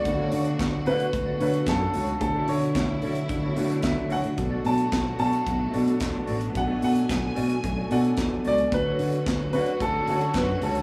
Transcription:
Already playing: B2 F#4 D5
0.04 D2 C#3 D3 F#3 A3 E4, muted clean electric guitar stroke, kick, closed hi-hat
0.13 F#4
0.17 F#4 A4 C#5
0.31 D3 F#4 A4 C#5, open hi-hat
0.44 muted clean electric guitar stroke, closed hi-hat
0.59 D2, kick, snare, clap, closed hi-hat
0.72 muted clean electric guitar stroke
0.85 D3 F#4 A4 B4 C#5, open hi-hat
0.99 muted clean electric guitar stroke, closed hi-hat
1.13 D2, kick, closed hi-hat
1.26 F#4 A4 D5
1.39 D3 A3 C#4 F#4 A4 B4 C#5, open hi-hat
1.53 muted clean electric guitar stroke, closed hi-hat
1.66 F#2 A4, kick, snare, clap, closed hi-hat
1.79 muted clean electric guitar stroke
1.93 C#2 F#4 A4 C#5, open hi-hat
2.06 muted clean electric guitar stroke, closed hi-hat
2.19 D2 D3 A3 C#4 E4 F#4 A4, muted clean electric guitar stroke, kick, closed hi-hat
2.34 F#4 A4 D5
2.48 D3 F#4 A4 C#5, open hi-hat
2.61 muted clean electric guitar stroke, closed hi-hat
2.75 D2, kick, snare, clap, closed hi-hat
2.89 muted clean electric guitar stroke
3.02 D3 F#4 A4 C#5, open hi-hat
3.15 muted clean electric guitar stroke, closed hi-hat
3.28 D3, muted clean electric guitar stroke, kick, closed hi-hat
3.41 F#4 A4 C#5
3.55 D3 A3 C#4 F#4 A4 C#5, open hi-hat
3.70 muted clean electric guitar stroke, closed hi-hat
3.82 D2 E5, kick, snare, clap, closed hi-hat
3.96 D3, muted clean electric guitar stroke
4.09 D2 F#4 A4 C#5 F#5, open hi-hat
4.23 D3, muted clean electric guitar stroke, closed hi-hat
4.36 B1 B2 B3 D4 F#4 A4, muted clean electric guitar stroke, kick, closed hi-hat
4.51 F#4 A4 D5
4.65 B2 F#4 A4 D5 A5, open hi-hat
4.78 closed hi-hat
4.92 B1, kick, snare, clap, closed hi-hat
5.05 muted clean electric guitar stroke
5.18 B2 F#4 A4 D5 A5, open hi-hat
5.33 muted clean electric guitar stroke, closed hi-hat
5.46 B1, muted clean electric guitar stroke, kick, closed hi-hat
5.60 F#4 A4 E5
5.72 B2 B3 D4 F#4 A4 D5, open hi-hat
5.86 muted clean electric guitar stroke, closed hi-hat
6.00 E2, kick, snare, clap, closed hi-hat
6.13 muted clean electric guitar stroke
6.26 A1 F#4 A4 D5, open hi-hat
6.41 muted clean electric guitar stroke, closed hi-hat
6.54 B1 B2 B3 D4 G#4 F#5 G#5, muted clean electric guitar stroke, kick, closed hi-hat
6.64 A4 E5
6.69 F#4 A4
6.82 B2 F#4 A4 D5 F#5, open hi-hat
6.95 muted clean electric guitar stroke, closed hi-hat
7.09 B1, kick, snare, clap, closed hi-hat
7.22 muted clean electric guitar stroke
7.35 B2 F#4 A4 D5, open hi-hat
7.50 muted clean electric guitar stroke, closed hi-hat
7.63 B1, muted clean electric guitar stroke, kick, closed hi-hat
7.77 F#4 A4 D5
7.90 B2 B3 D4 F#4 A4 D5 F#5, open hi-hat
8.04 muted clean electric guitar stroke, closed hi-hat
8.17 E2, kick, snare, clap, closed hi-hat
8.32 muted clean electric guitar stroke
8.44 C#2 F#4 A4 D5, open hi-hat
8.58 closed hi-hat
8.71 D2 D3 A3 C#4 F#4 B4, muted clean electric guitar stroke, kick, closed hi-hat
8.86 F#4 A4 C#5
8.99 D3 F#4 A4 C#5, open hi-hat
9.13 muted clean electric guitar stroke, closed hi-hat
9.26 D2, kick, snare, clap, closed hi-hat
9.41 muted clean electric guitar stroke
9.53 D3 F#4 A4 B4 C#5, open hi-hat
9.66 muted clean electric guitar stroke, closed hi-hat
9.80 D2 A4, kick, closed hi-hat
9.96 F#4 A4 D5
10.07 D3 A3 C#4 F#4 A4 C#5, open hi-hat
10.21 muted clean electric guitar stroke, closed hi-hat
10.34 F#2 B4, kick, snare, clap, closed hi-hat
10.49 muted clean electric guitar stroke
10.62 C#2 F#4 A4 C#5, open hi-hat
10.75 muted clean electric guitar stroke, closed hi-hat

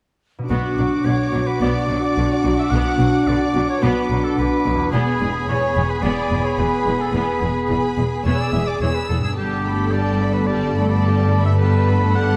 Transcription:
0.39 B2 B3
0.43 D4 F#4
0.49 B1 B2 B3 D4 F#4 F#5 D6
0.78 B1 B2 F#3
1.05 B1 B2 D3 C#5
1.33 B1 B2 F#3
1.47 B4
1.61 B1 B2 B3 D5
1.89 B1 B2 F#3
2.03 D5
2.17 B1 B2 D3
2.44 B1 B2 F#3
2.58 E5
2.71 B1 B2 B3 F#5
2.99 B1 B2 F#3
3.26 B1 B2 D3 D5
3.55 B1 B2 F#3
3.68 C#5
3.82 B1 B2 B3 B4
4.10 B1 B2 F#3
4.24 A4
4.38 B1 B2 D3 B4
4.65 B1 B2 F#3
4.75 E2
4.80 B3
4.84 E4
4.89 G#4
4.93 E1 E2 B3 G#4 G#5 B5
5.20 E1 E2 G#3
5.48 E1 E2 E3 C#5
5.75 E1 E2 G#3
5.89 B4
6.02 E1 E2 B3 D5
6.31 E1 E2 G#3
6.44 C#5
6.58 E1 E2 E3 B4
6.86 E1 E2 G#3
6.99 A4
7.13 E1 E2 B3 B4
7.41 E1 E2 G#3
7.70 E1 E2 E3 B5
7.98 E1 E2 G#3
8.25 E1 E2 B3 C#5 E6
8.39 D5
8.53 E1 E2 G#3 E5
8.67 D5 D6
8.81 E1 E2 E3 C#5 E6
8.94 B4
9.09 E1 E2 G#3 A4
9.19 G2
9.23 B3 G#4 E6
9.28 D4
9.32 A4
9.37 G1 G2 G3 B3 G4 A4 A5
9.66 A3 A4 B5
9.90 G3 B3 G4 D5 A5
10.21 A3 A4 B5
10.34 B4
10.46 G3 B3 G4 D5 A5
10.76 A3 A4 B5
10.90 D5
11.05 G3 G4 A5
11.32 A3 A4 B5
11.44 E5
11.58 G3 B3 G4 B4 A5
11.87 A3 A4 B5
12.13 G3 G4 F#5 A5

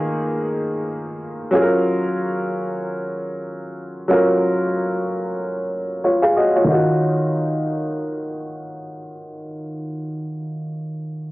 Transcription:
Already playing: D#3 A#3 F4 G#4
1.51 F#3 C#4 F4
1.55 G#4
1.61 A#4
4.08 F#3 C#4 F4
4.12 A#4
6.04 F4 C#5
6.22 G#4 F5
6.37 F#4 D#5
6.56 F4 C#5
6.64 D#3 D#4
6.70 F4 F#4

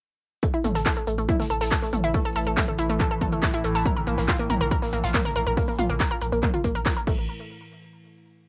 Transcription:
0.43 A2 E3 A3, kick, closed hi-hat, shaker
0.54 E4, closed hi-hat
0.64 A1 A3, closed hi-hat, mid tom, open hi-hat, shaker
0.74 A1 A4, snare, closed hi-hat, shaker
0.85 A4, kick, snare, clap, closed hi-hat, shaker
0.97 A4, closed hi-hat
1.07 A1 A3, closed hi-hat, open hi-hat, shaker
1.18 A1 A3, closed hi-hat, shaker
1.29 E4, kick, closed hi-hat, mid tom, shaker
1.39 A3, snare, closed hi-hat
1.50 A1 A4, closed hi-hat, open hi-hat, shaker
1.61 A1 A4, snare, closed hi-hat, shaker
1.71 A4, kick, snare, clap, closed hi-hat, shaker
1.82 A3, snare, closed hi-hat
1.93 A1 A3, closed hi-hat, mid tom, open hi-hat, shaker
2.04 A1 E4, closed hi-hat, shaker
2.14 A3, kick, closed hi-hat, open hi-hat, shaker
2.25 A4, closed hi-hat
2.35 A1 A4, closed hi-hat, open hi-hat, shaker
2.45 A1, closed hi-hat
2.47 A4, closed hi-hat, shaker
2.57 A3, kick, snare, clap, closed hi-hat, mid tom, shaker
2.68 A3, closed hi-hat
2.78 A1 E4, closed hi-hat, open hi-hat, shaker
2.89 A1 A3, closed hi-hat, shaker
3.00 A4, kick, clap, closed hi-hat, shaker
3.11 A4, closed hi-hat
3.21 A1 A4, kick, closed hi-hat, mid tom, open hi-hat, shaker
3.32 A1 A3, closed hi-hat, shaker
3.42 A3, kick, snare, clap, closed hi-hat, shaker
3.54 E4, closed hi-hat
3.64 A1 A3, closed hi-hat, open hi-hat, shaker
3.75 A1 A4, snare, closed hi-hat, shaker
3.86 A#4, kick, closed hi-hat, mid tom, shaker
3.97 A#4, closed hi-hat
4.07 A#1 A#3, closed hi-hat, open hi-hat, shaker
4.18 A#1 A#3, snare, closed hi-hat, shaker
4.28 F4, kick, snare, clap, closed hi-hat, shaker
4.39 A#3, closed hi-hat
4.50 A#1 A#4, closed hi-hat, mid tom, open hi-hat, shaker
4.61 A#1 A#4, closed hi-hat, shaker
4.71 A#4, kick, closed hi-hat, shaker
4.82 A#3, snare, closed hi-hat
4.93 A#1 A#3, closed hi-hat, open hi-hat, shaker
5.04 A#1 F4, snare, closed hi-hat, shaker
5.14 A#3, kick, snare, clap, closed hi-hat, mid tom, shaker
5.25 A#4, snare, closed hi-hat
5.36 A#1 A#4, closed hi-hat, open hi-hat, shaker
5.47 A#1 A#4, closed hi-hat, shaker
5.57 A#3, kick, closed hi-hat, open hi-hat, shaker
5.68 A#3, closed hi-hat
5.79 A#1 F4, closed hi-hat, mid tom, open hi-hat, shaker
5.89 A#1 A#3, closed hi-hat, shaker
6.00 A#4, kick, snare, clap, closed hi-hat, shaker
6.11 A#4, closed hi-hat
6.21 A#1 A#4, closed hi-hat, open hi-hat, shaker
6.32 A#1 A#3, closed hi-hat, shaker
6.43 A#3, kick, clap, closed hi-hat, mid tom, shaker
6.54 F4, closed hi-hat
6.64 A#1 A#3, kick, closed hi-hat, open hi-hat, shaker
6.75 A#1 A#4, closed hi-hat, shaker
6.86 A#4, kick, snare, clap, closed hi-hat, shaker
6.97 A#4, closed hi-hat
7.07 A1 A3, kick, crash

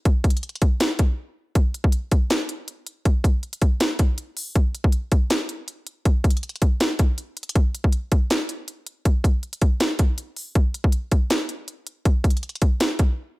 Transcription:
0.05 kick, closed hi-hat
0.24 kick, closed hi-hat
0.30 closed hi-hat
0.37 closed hi-hat
0.43 closed hi-hat
0.49 closed hi-hat
0.56 closed hi-hat
0.62 kick, closed hi-hat
0.80 snare, closed hi-hat
0.99 kick, closed hi-hat
1.55 kick, closed hi-hat
1.74 closed hi-hat
1.84 kick
1.92 closed hi-hat
2.12 kick, closed hi-hat
2.30 snare, closed hi-hat
2.49 closed hi-hat
2.68 closed hi-hat
2.87 closed hi-hat
3.05 kick, closed hi-hat
3.24 kick, closed hi-hat
3.43 closed hi-hat
3.53 closed hi-hat
3.62 kick, closed hi-hat
3.80 snare, closed hi-hat
3.99 kick, closed hi-hat
4.18 closed hi-hat
4.37 open hi-hat
4.55 kick, closed hi-hat
4.75 closed hi-hat
4.84 kick
4.92 closed hi-hat
5.12 kick, closed hi-hat
5.30 snare, closed hi-hat
5.49 closed hi-hat
5.68 closed hi-hat
5.87 closed hi-hat
6.05 kick, closed hi-hat
6.24 kick, closed hi-hat
6.31 closed hi-hat
6.37 closed hi-hat
6.43 closed hi-hat
6.49 closed hi-hat
6.56 closed hi-hat
6.62 kick, closed hi-hat
6.80 snare, closed hi-hat
6.99 kick, closed hi-hat
7.18 closed hi-hat
7.37 closed hi-hat, open hi-hat
7.43 closed hi-hat
7.49 closed hi-hat
7.56 kick, closed hi-hat
7.75 closed hi-hat
7.84 kick
7.93 closed hi-hat
8.12 kick, closed hi-hat
8.30 snare, closed hi-hat
8.49 closed hi-hat
8.68 closed hi-hat
8.87 closed hi-hat
9.05 kick, closed hi-hat
9.24 kick, closed hi-hat
9.43 closed hi-hat
9.53 closed hi-hat
9.62 kick, closed hi-hat
9.80 snare, closed hi-hat
9.99 kick, closed hi-hat
10.18 closed hi-hat
10.37 open hi-hat
10.55 kick, closed hi-hat
10.74 closed hi-hat
10.84 kick
10.92 closed hi-hat
11.12 kick, closed hi-hat
11.30 snare, closed hi-hat
11.49 closed hi-hat
11.68 closed hi-hat
11.87 closed hi-hat
12.05 kick, closed hi-hat
12.24 kick, closed hi-hat
12.30 closed hi-hat
12.37 closed hi-hat
12.43 closed hi-hat
12.49 closed hi-hat
12.55 closed hi-hat
12.62 kick, closed hi-hat
12.80 snare, closed hi-hat
12.99 kick, closed hi-hat

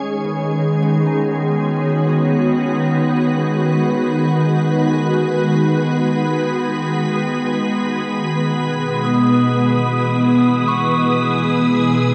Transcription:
Already playing: D#3 G#3 C#4 G#4 C#5
0.24 B3
0.82 B3
1.05 B3 D#4
1.40 B4
1.46 F#4
2.07 F#4
8.48 B2 D#6
9.04 D#6
9.39 E3
10.68 C#6
10.74 G#4

